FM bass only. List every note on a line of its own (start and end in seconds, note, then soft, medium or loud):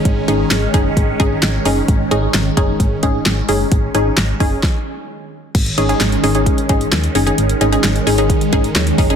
0.05 0.21 G#1 loud
0.28 0.44 G#1 loud
0.51 0.67 G#1 loud
0.74 0.90 F#1 medium
0.97 1.13 G#1 loud
1.20 1.36 G#1 loud
1.43 1.59 G#1 loud
1.66 1.82 F#1 medium
1.88 2.04 G#1 loud
2.11 2.27 G#1 loud
2.34 2.50 G#1 loud
2.57 2.73 F#1 loud
2.80 2.96 G#1 loud
3.03 3.19 G#1 loud
3.26 3.42 G#1 loud
3.49 3.65 F#1 medium
3.72 3.88 G#1 loud
3.95 4.11 G#1 loud
4.17 4.33 G#1 loud
4.40 4.56 F#1 medium
5.55 5.71 G#1 loud
5.78 5.94 G#1 loud
6.00 6.17 G#1 loud
6.23 6.48 G#1 loud
6.70 6.86 G#1 loud
6.92 7.08 D#2 loud
7.15 7.31 F#1 loud
7.38 7.54 G#1 loud
7.61 7.77 G#1 loud
7.84 8.00 G#1 loud
8.07 8.31 G#1 loud
8.53 8.69 G#1 loud
8.75 8.91 D#2 loud
8.98 9.14 F#1 loud